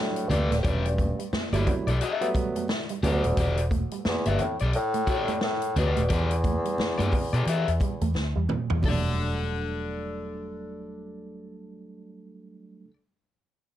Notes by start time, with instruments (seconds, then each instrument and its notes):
Already playing: bassoon A2, tine electric piano F#3 G3 A3 D4
0.16 closed hi-hat
0.29 fingered electric bass D2, bassoon G2, overdriven electric guitar G4 A4 D5, muted clean electric guitar stroke, closed hi-hat, high conga, low conga
0.50 fingered electric bass D#1, clean electric guitar A3, snare, closed hi-hat
0.59 bassoon A2
0.63 fingered electric bass E1, bassoon G2, tine electric piano F#3 G3 A3 C#4, overdriven electric guitar G4 A4 D5, kick, closed hi-hat, muted conga
0.85 muted clean electric guitar stroke, closed hi-hat
0.98 clean electric guitar A3, kick, closed hi-hat, muted conga, high conga
1.19 clean electric guitar G3, closed hi-hat
1.33 muted fingered electric bass stroke, muted clean electric guitar stroke, snare, high conga
1.53 fingered electric bass G1, tine electric piano F#3 G3 A3 E4, clean electric guitar G3, overdriven electric guitar G4 A4 D5, closed hi-hat, high conga
1.67 clean electric guitar B3, kick, closed hi-hat, muted conga, low conga
1.87 fingered electric bass B1, overdriven electric guitar G4 A4 D5, closed hi-hat
2.01 overdriven electric guitar G4 A4 E5, muted clean electric guitar stroke, closed hi-hat
2.21 tine electric piano F#3 G3 A3 B3, closed hi-hat
2.34 clean electric guitar G3, kick, closed hi-hat, muted conga
2.56 clean electric guitar A3, closed hi-hat, high conga
2.68 muted clean electric guitar stroke, snare, muted conga
2.89 clean electric guitar G3, closed hi-hat
3.03 fingered electric bass D2, bassoon D2, clean electric guitar E3, tine electric piano F#3 G3 A3 B3, overdriven electric guitar G4 A4 D5, closed hi-hat, high conga, low conga
3.24 fingered electric bass D#1, closed hi-hat
3.37 fingered electric bass E1, overdriven electric guitar G4 A4 D5, kick, closed hi-hat, muted conga
3.57 muted clean electric guitar stroke, closed hi-hat
3.71 clean electric guitar A3, kick, closed hi-hat, high conga
3.91 clean electric guitar G3, closed hi-hat
4.05 bassoon E2, muted fingered electric bass stroke, muted clean electric guitar stroke, snare, muted conga, high conga
4.25 fingered electric bass G1, bassoon G2, clean electric guitar G3, overdriven electric guitar G4 A4 E5, closed hi-hat, high conga
4.39 bassoon A2, clean electric guitar B3, closed hi-hat, low conga
4.59 fingered electric bass B1, overdriven electric guitar G4 A4 D5, closed hi-hat
4.73 bassoon A2, closed hi-hat
4.94 clean electric guitar A3, closed hi-hat
5.07 overdriven electric guitar G4 A4 D5, muted clean electric guitar stroke, kick, closed hi-hat, muted conga
5.28 clean electric guitar A3, closed hi-hat, high conga
5.41 bassoon A2, clean electric guitar B3, snare
5.62 closed hi-hat
5.76 fingered electric bass D2, bassoon B2, overdriven electric guitar G4 A4 D5, muted clean electric guitar stroke, closed hi-hat, muted conga, high conga, low conga
5.96 fingered electric bass D#1, clean electric guitar A3, closed hi-hat
6.09 fingered electric bass E2, bassoon E2, overdriven electric guitar G4 A4 D5, kick, closed hi-hat, muted conga
6.31 muted clean electric guitar stroke, closed hi-hat
6.44 clean electric guitar A3, kick, closed hi-hat, muted conga, high conga
6.65 clean electric guitar G3, closed hi-hat
6.78 muted fingered electric bass stroke, muted clean electric guitar stroke, snare, high conga
6.98 fingered electric bass G2, clean electric guitar G3, overdriven electric guitar G4 A4 D5, closed hi-hat, high conga
7.12 clean electric guitar B3, kick, open hi-hat, muted conga, low conga
7.33 fingered electric bass B2, overdriven electric guitar G4 A4 D5, closed hi-hat
7.45 fingered electric bass E3, overdriven electric guitar G4 A4 E5, muted clean electric guitar stroke, closed hi-hat, muted conga
7.68 fingered electric bass E2, closed hi-hat
7.80 clean electric guitar G3, kick, closed hi-hat, muted conga
8.01 fingered electric bass E2, clean electric guitar A3, closed hi-hat, high conga
8.14 fingered electric bass D2, muted clean electric guitar stroke, snare, muted conga
8.36 fingered electric bass E2, clean electric guitar G3
8.49 clean electric guitar E3, mid tom, muted conga, high conga, low conga
8.70 fingered electric bass E2, floor tom
8.82 fingered electric bass E1, clean electric guitar E3, tine electric piano F#3 G3 A3, overdriven electric guitar A4, kick, open hi-hat, high conga
8.86 tine electric piano D4, overdriven electric guitar D5